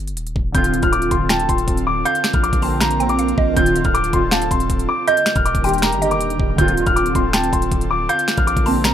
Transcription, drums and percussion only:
0.08 closed hi-hat
0.17 closed hi-hat
0.27 closed hi-hat
0.36 kick
0.55 kick, closed hi-hat
0.64 closed hi-hat
0.74 closed hi-hat
0.83 kick, closed hi-hat
0.93 closed hi-hat
1.02 closed hi-hat
1.11 kick, closed hi-hat
1.29 finger snap, snare, closed hi-hat
1.40 closed hi-hat
1.49 kick, closed hi-hat
1.58 closed hi-hat
1.68 kick, closed hi-hat
1.77 closed hi-hat
2.06 closed hi-hat
2.15 closed hi-hat
2.24 finger snap, snare, closed hi-hat
2.33 kick, closed hi-hat
2.44 closed hi-hat
2.53 kick, closed hi-hat
2.62 open hi-hat
2.81 finger snap, snare, closed hi-hat
2.91 closed hi-hat
3.00 closed hi-hat
3.09 closed hi-hat
3.19 closed hi-hat
3.28 closed hi-hat
3.38 kick
3.57 kick, closed hi-hat
3.66 closed hi-hat
3.76 closed hi-hat
3.84 kick, closed hi-hat
3.95 closed hi-hat
4.04 closed hi-hat
4.13 kick, closed hi-hat
4.31 finger snap, snare, closed hi-hat
4.42 closed hi-hat
4.51 kick, closed hi-hat
4.60 closed hi-hat
4.70 kick, closed hi-hat
4.79 closed hi-hat
5.08 closed hi-hat
5.17 closed hi-hat
5.26 finger snap, snare, closed hi-hat
5.35 kick, closed hi-hat
5.46 closed hi-hat
5.55 kick, closed hi-hat
5.64 closed hi-hat, open hi-hat
5.69 closed hi-hat
5.74 closed hi-hat
5.78 closed hi-hat
5.82 finger snap, snare, closed hi-hat
5.92 closed hi-hat
6.02 closed hi-hat
6.11 closed hi-hat
6.21 closed hi-hat
6.30 closed hi-hat
6.40 kick
6.58 kick, closed hi-hat
6.68 closed hi-hat
6.77 closed hi-hat
6.86 kick, closed hi-hat
6.97 closed hi-hat
7.06 closed hi-hat
7.15 kick, closed hi-hat
7.33 finger snap, snare, closed hi-hat
7.44 closed hi-hat
7.53 kick, closed hi-hat
7.62 closed hi-hat
7.72 kick, closed hi-hat
7.81 closed hi-hat
8.09 closed hi-hat
8.19 closed hi-hat
8.28 finger snap, snare, closed hi-hat
8.37 kick, closed hi-hat
8.48 closed hi-hat
8.57 kick, closed hi-hat
8.66 open hi-hat
8.84 finger snap, snare, closed hi-hat

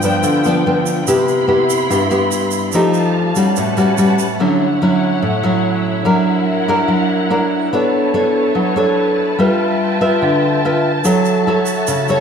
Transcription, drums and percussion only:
0.02 shaker
0.23 shaker
0.44 shaker
0.86 shaker
1.07 shaker
1.28 shaker
1.70 shaker
1.91 shaker
2.11 shaker
2.31 shaker
2.51 shaker
2.72 shaker
2.94 shaker
3.36 shaker
3.56 shaker
3.77 shaker
3.98 shaker
4.19 shaker
11.04 shaker
11.25 shaker
11.66 shaker
11.87 shaker
12.08 shaker

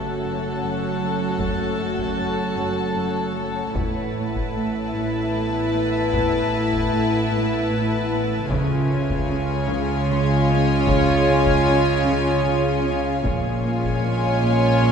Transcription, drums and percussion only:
1.39 taiko
1.99 taiko
3.76 taiko
4.35 taiko
6.14 taiko
6.73 taiko
8.50 taiko
9.10 taiko
10.87 taiko
11.46 taiko
13.24 taiko
13.84 taiko

